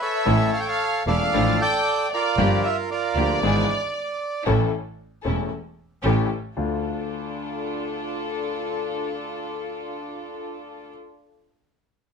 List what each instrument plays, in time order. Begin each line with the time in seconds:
Already playing: bandoneon B4
0.02 bandoneon A4 C#5 E5, violin section E5
0.26 upright piano A1 A2 E3 A3 C#4 A4, double bass A1, string section A3 C#4 E4
0.54 bandoneon F5, violin section F5
0.60 violin section G5, bandoneon G5
0.68 violin section F5, bandoneon F5
1.07 double bass E1, upright piano E1 E2 E3 A3 C#4 A4, string section A3 C#4 E4, bandoneon A4 D5 F5, violin section F5
1.33 double bass A1, upright piano A1 A2 F3 A3 D4 A4, string section A3 D4 F4
1.60 bandoneon D5 G5, violin section G5
2.11 bandoneon F4 A#4 D5, violin section D5
2.37 double bass G1, upright piano G1 G2 F3 A#3 D4 G4, string section A#3 F4 G4
2.63 violin section E5, bandoneon E5
2.89 bandoneon F4 A#4 D5, violin section D5
3.15 double bass D2, upright piano D2 D3 F3 A#3 D4 G4, string section A#3 F4 G4
3.41 double bass G#1, upright piano G#1 G#2 E3 B3 D4 G#4, string section D4 E4 G#4
4.46 upright piano A1 A2 E3 A3 C#4 A4, double bass A1, string section C#4 E4 A4
5.24 upright piano E1 E2 E3 A3 C#4 A4, double bass E1, string section C#4 E4 A4
6.04 double bass A1, upright piano A1 A2 E3 A3 C#4 G4, string section C#4 G4 A4
6.57 upright piano D2 A3 D4 F4, double bass D2, string section D4 F4 A4